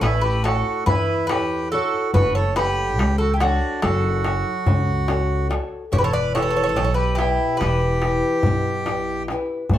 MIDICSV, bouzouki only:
0, 0, Header, 1, 2, 480
1, 0, Start_track
1, 0, Tempo, 842697
1, 1216, Time_signature, 9, 3, 24, 8
1, 5571, End_track
2, 0, Start_track
2, 0, Title_t, "Bouzouki"
2, 0, Program_c, 0, 25
2, 8, Note_on_c, 0, 71, 94
2, 115, Note_off_c, 0, 71, 0
2, 122, Note_on_c, 0, 71, 89
2, 238, Note_off_c, 0, 71, 0
2, 250, Note_on_c, 0, 69, 90
2, 488, Note_off_c, 0, 69, 0
2, 491, Note_on_c, 0, 71, 99
2, 716, Note_off_c, 0, 71, 0
2, 723, Note_on_c, 0, 71, 93
2, 952, Note_off_c, 0, 71, 0
2, 978, Note_on_c, 0, 69, 92
2, 1201, Note_off_c, 0, 69, 0
2, 1219, Note_on_c, 0, 71, 91
2, 1330, Note_off_c, 0, 71, 0
2, 1338, Note_on_c, 0, 73, 91
2, 1457, Note_off_c, 0, 73, 0
2, 1460, Note_on_c, 0, 71, 93
2, 1797, Note_off_c, 0, 71, 0
2, 1813, Note_on_c, 0, 69, 85
2, 1893, Note_off_c, 0, 69, 0
2, 1900, Note_on_c, 0, 67, 59
2, 1938, Note_off_c, 0, 67, 0
2, 1943, Note_on_c, 0, 66, 84
2, 2165, Note_off_c, 0, 66, 0
2, 2178, Note_on_c, 0, 69, 73
2, 3116, Note_off_c, 0, 69, 0
2, 3376, Note_on_c, 0, 73, 105
2, 3405, Note_off_c, 0, 73, 0
2, 3409, Note_on_c, 0, 71, 89
2, 3439, Note_off_c, 0, 71, 0
2, 3441, Note_on_c, 0, 73, 111
2, 3492, Note_off_c, 0, 73, 0
2, 3494, Note_on_c, 0, 74, 105
2, 3614, Note_off_c, 0, 74, 0
2, 3616, Note_on_c, 0, 73, 98
2, 3653, Note_off_c, 0, 73, 0
2, 3660, Note_on_c, 0, 73, 73
2, 3698, Note_off_c, 0, 73, 0
2, 3705, Note_on_c, 0, 73, 84
2, 3733, Note_off_c, 0, 73, 0
2, 3739, Note_on_c, 0, 73, 75
2, 3773, Note_off_c, 0, 73, 0
2, 3779, Note_on_c, 0, 73, 91
2, 3804, Note_off_c, 0, 73, 0
2, 3811, Note_on_c, 0, 73, 77
2, 3846, Note_off_c, 0, 73, 0
2, 3853, Note_on_c, 0, 73, 88
2, 3891, Note_off_c, 0, 73, 0
2, 3898, Note_on_c, 0, 73, 76
2, 3940, Note_off_c, 0, 73, 0
2, 3955, Note_on_c, 0, 71, 84
2, 4073, Note_on_c, 0, 67, 93
2, 4076, Note_off_c, 0, 71, 0
2, 4307, Note_off_c, 0, 67, 0
2, 4312, Note_on_c, 0, 71, 85
2, 5255, Note_off_c, 0, 71, 0
2, 5571, End_track
0, 0, End_of_file